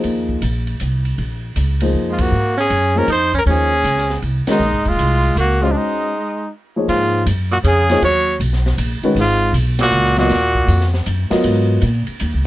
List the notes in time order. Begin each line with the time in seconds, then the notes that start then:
Already playing: F3 A#3 D#4 G#4 C5
0.04 D#2, ride
0.29 kick
0.42 A#1, hi-hat pedal, ride
0.67 ride
0.80 C2, hi-hat pedal, ride
1.05 ride
1.18 A#1, ride
1.56 C#2, hi-hat pedal, ride
1.80 F3 A#3 D#4 G#4 C5, ride
1.94 F2
2.09 G#3 F4
2.18 A#3 F#4, kick, ride
2.32 G#2
2.57 C#4 G#4, snare
2.70 F#2, hi-hat pedal, ride
2.95 F3 A#3 C#4 D#4 G#4 A#4 C5
3.07 F2 D#4, hi-hat pedal, ride
3.12 C5
3.33 C#4, kick, ride
3.38 A#4
3.46 D#2 F3 A#3 C#4 D#4 G#4 C5, ride
3.51 G#4
3.84 C#2, hi-hat pedal, ride
3.97 snare
4.10 snare
4.22 C2, ride
4.47 D#3 G#3 C#4 F#4 A#4, muted upright bass stroke, snare, ride
4.51 D#4
4.59 A#1
4.72 G#1
4.85 D#1 G#3 F4, kick, ride
4.97 C2, hi-hat pedal, ride
5.24 ride
5.35 C#2 A#3, hi-hat pedal, ride
5.40 F#4
5.61 G#3 C#4 F4 F#4 C5 D#5
5.68 F3 D4
5.75 G#3 D#4
6.76 F3 A#3 D#4 G#4 C#5
6.88 G#2 F4, ride
7.26 F#2, hi-hat pedal, ride
7.51 A#2 F#4, ride
7.64 F2 C#3 G#4, hi-hat pedal, ride
7.89 F3 A#3 D#4 G#4 C#5, snare, ride
8.01 D#2 F#3 C#5, ride
8.40 B1, ride
8.53 snare
8.66 snare
8.77 A#1, hi-hat pedal, ride
9.02 D#3 G#3 C#4 F#4 B4, muted upright bass stroke, ride
9.15 G#1 G#2, ride
9.21 F4
9.53 B1, hi-hat pedal, ride
9.79 A#2 F#4, snare, ride
9.91 C#2, hi-hat pedal
10.04 snare
10.16 A#2 F#3 B3 F4 F#4 A#4 D#5, snare, ride
10.29 D#2, snare, ride
10.55 kick
10.68 F2, ride
10.81 snare
10.94 snare
11.06 F#2, hi-hat pedal, ride
11.30 F#3 B3 F4 A#4 D#5, muted upright bass stroke, snare, ride
11.44 G#2, ride
11.81 A#2, hi-hat pedal, ride
12.07 muted upright bass stroke, ride
12.20 D#2, hi-hat pedal, ride
12.34 C#2